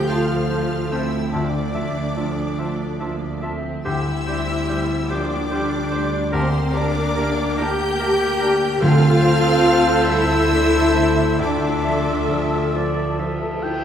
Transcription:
Already playing: grand piano D2 F3 C4, double bass section D2, harp D3 F3 C4 A4 C5, viola section F3 A3
0.08 grand piano F3, cello section F4, french horn section F4, clarinet F4, oboe C5, violin section F5 F6, harp A5, flute section A5
0.50 grand piano F3, clarinet F4, oboe C5, flute section A5, harp A5
0.71 harp C5
0.91 french horn section C4, grand piano C4, cello section E4, clarinet F4, oboe C5, violin section E5 E6, flute section A5
1.12 harp C4
1.32 grand piano D2, harp D3, cello section D4, french horn section D4, clarinet F4, violin section D5 D6, oboe E5, flute section A5
1.53 harp D4
1.74 harp F3, clarinet F4, oboe E5, grand piano E5, flute section A5
2.15 grand piano F3, clarinet F4, harp A4, oboe E5, flute section A5
2.37 harp F4
2.58 grand piano F3, viola section A3, clarinet F4, harp E5, oboe E5, flute section A5
2.79 harp A5
3.00 grand piano F3, viola section A#3, clarinet F4, harp E5, oboe E5, flute section A5
3.21 harp F4
3.41 viola section C4, clarinet F4, harp A4, oboe E5, grand piano E5, flute section A5
3.64 harp F3
3.85 grand piano D2, double bass section D2, harp D3, viola section C4 G4, cello section E4, french horn section E4, clarinet G4, oboe C5, violin section E5 E6, flute section G5
4.06 harp G3
4.27 harp D4, grand piano D4, clarinet G4, oboe C5, flute section G5
4.48 harp C5
4.68 grand piano G3, clarinet G4, harp G4, oboe C5, flute section G5
4.90 harp D5
5.10 grand piano F3, viola section A#3 G4, french horn section D4, cello section D4, clarinet G4, oboe C5, violin section D5 D6, flute section G5, harp C6
5.31 harp G5
5.51 grand piano G3, viola section A3, clarinet G4, oboe C5, flute section G5, harp C6
5.71 harp D5
5.91 viola section G3, grand piano D4, harp G4, clarinet G4, oboe C5, flute section G5
6.12 harp D4
6.33 grand piano D2, harp D3, viola section A#3 A#4, french horn section C4, cello section C4, clarinet G4, oboe A#4, violin section C5 C6, flute section A5
6.54 harp A#3
6.73 french horn section D4, harp D4, cello section D4, grand piano D4, clarinet G4, oboe A#4, violin section D5 D6, flute section A5
7.16 grand piano A#3, clarinet G4, oboe A#4, harp A#4, flute section A5
7.38 harp D5
7.58 grand piano A#3, viola section A#3 G4, clarinet G4, french horn section G4, cello section G4, oboe A#4, violin section G5 G6, harp A5, flute section A5
7.80 harp D6
8.00 grand piano A#3, clarinet G4, oboe A#4, harp A5, flute section A5
8.21 harp D5
8.40 grand piano D4, clarinet G4, oboe A#4, harp A#4, flute section A5
8.62 harp D4
8.81 double bass section D2, grand piano D2, timpani D3, harp D3, viola section C4 A4, french horn section F4, cello section F4, clarinet A4, oboe C5, violin section F5 F6, flute section A5
9.04 harp A3
9.23 grand piano C4, harp C4
9.45 harp A4
9.65 grand piano A3, harp C4
9.87 harp C5
10.07 grand piano G3, french horn section E4, cello section E4, violin section E5 E6, harp A5
10.30 harp C5
10.52 grand piano A3, viola section D4, harp A5
10.75 harp C5
10.95 grand piano C4, harp A4
11.19 harp C4
11.39 grand piano D2, harp D3, french horn section D4, cello section D4, clarinet F4, viola section A4 E5, violin section D5 D6, oboe E5, flute section A5
11.64 harp D4
11.85 harp F3, grand piano E5
12.29 grand piano F3, harp A4
12.54 harp F4
12.76 grand piano F3, oboe D5, harp E5
12.98 harp A5
13.19 grand piano F3, oboe E5, harp E5
13.43 harp F4
13.63 grand piano E4, harp A4, oboe G5

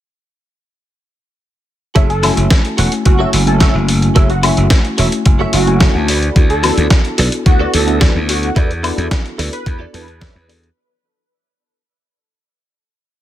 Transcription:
1.95 slap bass F#1, tine electric piano A3 C#4 E4 F#4 G#4, clean electric guitar F#4 A4 C#5 E5, kick, closed hi-hat
2.09 analog synth lead A4, closed hi-hat
2.22 tine electric piano A3 C#4 E4 F#4 G#5, clean electric guitar F#4 A4 C#5 E5, snare, open hi-hat, high woodblock
2.37 slap bass F#1, closed hi-hat
2.50 kick, snare, closed hi-hat
2.65 closed hi-hat
2.77 slap bass E1, clean electric guitar F#4 A4 C#5 F#5, open hi-hat
2.92 closed hi-hat
3.05 slap bass F#1, tine electric piano A3 C#4 E4 F#4 G#5, analog synth lead F#4, muted clean electric guitar stroke, kick, closed hi-hat
3.19 clean electric guitar F#4 A4 C#5 E5
3.33 slap bass F#1, open hi-hat
3.46 tine electric piano A3 C#4 E4 F#4 G#5, analog synth lead A4, closed hi-hat
3.60 clean electric guitar F#4 A4 C#5 E5, analog synth lead A4, kick, snare, closed hi-hat
3.75 slap bass F#1
3.88 muted clean electric guitar stroke, open hi-hat
4.02 closed hi-hat
4.15 slap bass F#1, tine electric piano A3 C#4 E4 G#4, clean electric guitar F#4 A4 C#5 E5, kick, closed hi-hat
4.30 analog synth lead F#4, closed hi-hat
4.42 tine electric piano A3 C#4 E4 F#4 G#5, clean electric guitar F#4 A4 C#5 E5, analog synth lead F#4, open hi-hat, high woodblock
4.57 slap bass F#1, closed hi-hat
4.70 kick, snare, closed hi-hat
4.85 closed hi-hat
4.98 slap bass E1, clean electric guitar F#4 A4 C#5 E5, open hi-hat
5.12 closed hi-hat
5.25 slap bass F#1, tine electric piano A3 C#4 E4 F#4 G#5, muted clean electric guitar stroke, kick, closed hi-hat
5.39 clean electric guitar F#4 A4 C#5 E5
5.53 slap bass F#1, analog synth lead F#4, open hi-hat
5.67 tine electric piano A3 C#4 E4 F#4 G#5, closed hi-hat
5.80 clean electric guitar F#4 A4 C#5 E5 A5, kick, snare, open hi-hat
5.95 slap bass D2
6.08 clean electric guitar F#4 A4 B4 D5, open hi-hat
6.23 closed hi-hat
6.35 slap bass D2, tine electric piano B3 D4 E4 F#4 A4, kick, closed hi-hat
6.50 analog synth lead A4, closed hi-hat
6.62 tine electric piano B3 D4 E4 F#4 A4, clean electric guitar F#4 A4 B4 D5, snare, open hi-hat, high woodblock
6.77 slap bass D2, closed hi-hat
6.90 kick, snare, closed hi-hat
7.05 closed hi-hat
7.18 slap bass B1, clean electric guitar F#4 A4 B4 D5, open hi-hat
7.32 closed hi-hat
7.45 slap bass D2, tine electric piano B3 D4 E4 F#4 A4, analog synth lead F#4, muted clean electric guitar stroke, kick, closed hi-hat
7.59 clean electric guitar F#4 A4 B4 D5
7.74 slap bass D2, analog synth lead A4, open hi-hat
7.86 tine electric piano B3 D4 E4 F#4 A4, closed hi-hat
8.00 clean electric guitar F#4 A4 B4 D5, kick, snare, closed hi-hat
8.15 slap bass D2
8.28 analog synth lead F#4, muted clean electric guitar stroke, open hi-hat
8.43 analog synth lead F#4, closed hi-hat
8.56 slap bass E2, tine electric piano B3 D4 E4 F#4 A4, clean electric guitar E4 A4 B4 D5, kick, closed hi-hat
8.71 closed hi-hat
8.83 tine electric piano B3 D4 E4 F#4 A4, clean electric guitar E4 A4 B4 D5, open hi-hat, high woodblock
8.98 slap bass E2, closed hi-hat
9.11 kick, snare, closed hi-hat
9.26 closed hi-hat
9.38 slap bass D2, clean electric guitar E4 A4 B4 D5, open hi-hat
9.53 analog synth lead B4, closed hi-hat
9.66 slap bass E2, tine electric piano B3 D4 E4 F#4 A4, muted clean electric guitar stroke, kick, closed hi-hat
9.79 clean electric guitar E4 A4 B4 D5
9.93 slap bass E2, tine electric piano B3 D4 E4 F#4 A4, analog synth lead B4, clean electric guitar A5, open hi-hat
10.08 closed hi-hat
10.20 clean electric guitar E4 A4 B4 C#5 D5, kick, snare, open hi-hat
10.35 slap bass E2
10.48 tine electric piano B3 D4 E4 F#4 A4, clean electric guitar D5, muted clean electric guitar stroke, open hi-hat
10.63 closed hi-hat

